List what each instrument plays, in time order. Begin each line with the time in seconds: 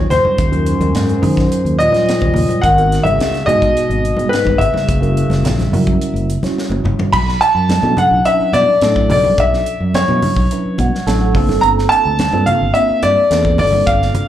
Already playing: tine electric piano F#3 C#4 D#4 F4 C#5
0.10 fingered electric bass D#2, bass clarinet F#2, grand piano C5, snare, closed hi-hat, low conga
0.24 muted fingered electric bass stroke, high conga
0.38 fingered electric bass D#2, kick, closed hi-hat
0.52 tine electric piano F#3 C#4 D#4 F4 A#4, closed hi-hat
0.66 closed hi-hat
0.80 fingered electric bass D#2, closed hi-hat, high conga
0.95 fingered electric bass G#2, snare, closed hi-hat
1.09 closed hi-hat
1.22 fingered electric bass D#3, tine electric piano F#3 C#4 D#4 F4 G#4, open hi-hat, low conga
1.37 kick, snare, closed hi-hat
1.52 muted fingered electric bass stroke, closed hi-hat
1.65 fingered electric bass D#2, closed hi-hat
1.79 bass clarinet A#2, grand piano D#5, closed hi-hat
1.92 tine electric piano F#3 C#4 D#4 F4 C5, snare, closed hi-hat, high conga
2.09 snare, closed hi-hat
2.21 fingered electric bass D#2, kick, high conga
2.34 fingered electric bass D#2, open hi-hat, low conga
2.49 muted fingered electric bass stroke, closed hi-hat, high conga
2.62 fingered electric bass G#1, bass clarinet D#3, grand piano F#5, kick, closed hi-hat
2.78 tine electric piano G#3 B3 D#4 F#4 A#4, closed hi-hat
2.92 snare, closed hi-hat
3.03 fingered electric bass G#1, bass clarinet C#3, grand piano E5, closed hi-hat, high conga
3.19 fingered electric bass C#2, snare, closed hi-hat
3.35 snare, closed hi-hat
3.46 fingered electric bass G#2, bass clarinet B2, tine electric piano G#3 B3 D#4 F#4 G#4, grand piano D#5, closed hi-hat, low conga
3.62 kick, closed hi-hat
3.76 muted fingered electric bass stroke, closed hi-hat
3.89 fingered electric bass G#1, closed hi-hat
4.05 closed hi-hat
4.17 tine electric piano G#3 B3 D#4 F#4 G#4, closed hi-hat, high conga
4.29 bass clarinet G#2, grand piano B4, closed hi-hat
4.34 snare
4.45 fingered electric bass G#1, kick, high conga
4.58 fingered electric bass G#1, bass clarinet C#3, grand piano E5, closed hi-hat, low conga
4.74 muted fingered electric bass stroke, snare, high conga
4.88 fingered electric bass F#1, kick, closed hi-hat
5.02 tine electric piano G3 C#4 E4 F#4 A#4, closed hi-hat
5.17 closed hi-hat
5.30 fingered electric bass F#1, snare, closed hi-hat, high conga
5.43 fingered electric bass A#1, snare, closed hi-hat, low conga
5.59 snare, closed hi-hat, high conga
5.72 fingered electric bass F#2, tine electric piano G3 C#4 E4 F#4 A#4, open hi-hat, low conga
5.87 kick, closed hi-hat
6.00 muted fingered electric bass stroke, closed hi-hat
6.13 fingered electric bass F#1, closed hi-hat
6.30 closed hi-hat
6.43 tine electric piano G3 C#4 E4 F#4 C#5, snare, closed hi-hat, high conga
6.58 snare
6.70 fingered electric bass F#1, high tom, high conga
6.84 fingered electric bass F#1, mid tom, low conga
6.99 floor tom, high conga
7.13 fingered electric bass B1, grand piano B5, kick, crash
7.29 snare
7.41 grand piano A5, closed hi-hat
7.55 fingered electric bass F#2
7.69 snare, closed hi-hat, high conga
7.83 fingered electric bass B2, tine electric piano F#3 C#4 D4 E4 A4, high conga
7.97 grand piano F#5, closed hi-hat, low conga
8.11 fingered electric bass B1
8.25 tine electric piano F#3 C#4 D4 E4 B4, grand piano E5, closed hi-hat
8.40 muted fingered electric bass stroke
8.53 fingered electric bass B2, grand piano D5, closed hi-hat, high conga
8.81 fingered electric bass A2, tine electric piano F#3 C#4 D4 E4 A4, snare, closed hi-hat
8.96 kick
9.10 fingered electric bass B1, grand piano D5, open hi-hat, low conga
9.24 high conga
9.38 fingered electric bass B1, grand piano E5, kick, closed hi-hat
9.53 snare
9.66 closed hi-hat
9.80 fingered electric bass F#2
9.94 grand piano C#5, snare, closed hi-hat, high conga
10.08 fingered electric bass B2, tine electric piano F#3 C#4 D4 E4 F#4, high conga
10.22 open hi-hat, low conga
10.36 fingered electric bass B1, kick
10.51 tine electric piano F#3 C#4 D4 E4 B4, closed hi-hat
10.66 muted fingered electric bass stroke
10.78 fingered electric bass B2, tine electric piano F#5, kick, closed hi-hat, high conga
10.95 snare
11.07 fingered electric bass A1, tine electric piano F#3 C#4 D4 E4 A4 A5, snare, closed hi-hat
11.21 tine electric piano F#5
11.35 fingered electric bass G1, tine electric piano A#3 C4 D4 F4 A4 F5, kick, open hi-hat, low conga
11.49 snare, high conga
11.61 fingered electric bass G1, grand piano A#5, closed hi-hat
11.78 snare
11.89 grand piano A5, closed hi-hat
12.05 fingered electric bass D2
12.19 snare, closed hi-hat, high conga
12.33 fingered electric bass G2, tine electric piano A#3 C4 D4 F4 A4, high conga
12.46 grand piano F5, closed hi-hat, low conga
12.61 fingered electric bass G1
12.74 tine electric piano A#3 C4 D4 F4 A#4, grand piano E5, closed hi-hat
12.90 muted fingered electric bass stroke
13.03 fingered electric bass G2, grand piano D5, closed hi-hat, high conga
13.30 fingered electric bass E2, tine electric piano A#3 C4 D4 F4 A4, snare, closed hi-hat
13.45 kick
13.58 fingered electric bass G1, grand piano D5, open hi-hat, low conga
13.72 high conga
13.87 fingered electric bass G1, grand piano F5, kick, closed hi-hat
14.02 snare
14.15 closed hi-hat, low conga